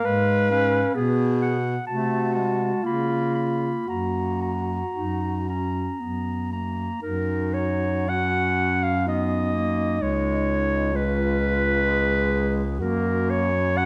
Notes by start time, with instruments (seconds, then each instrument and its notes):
Already playing: clarinet F5
0.04 baritone saxophone G#2, clarinet G#3, alto saxophone B4
0.50 clarinet C#4 F5
0.95 baritone saxophone B2, clarinet B3, alto saxophone G#4
1.42 clarinet F#5
1.87 baritone saxophone C3, clarinet A3 A5, alto saxophone F#4
2.35 clarinet G#3 A5
2.84 baritone saxophone C#3, clarinet A#3 B5, alto saxophone F4
3.35 clarinet B5
3.88 baritone saxophone F#2, clarinet A#3 A#5, alto saxophone F#4
4.42 clarinet A#5
4.95 baritone saxophone F#2, clarinet D#4
5.48 clarinet C#4 A#5
6.00 baritone saxophone F#2, clarinet B3
6.51 clarinet A#3 A#5
7.01 baritone saxophone F#2, clarinet D#4 A#4, alto saxophone F#4
7.54 clarinet C#5
8.08 clarinet C#4 F#5
8.83 clarinet F5
9.07 clarinet B3 D#5, alto saxophone D#4
9.53 clarinet A#3
10.00 baritone saxophone C#2, clarinet G#3 C#5
10.93 clarinet G#3 B4, alto saxophone F4
11.85 alto saxophone G#4
12.79 baritone saxophone F#2, clarinet A#3 A#4, alto saxophone F#4
13.30 clarinet C#5
13.77 clarinet C#4 F#5, alto saxophone F#4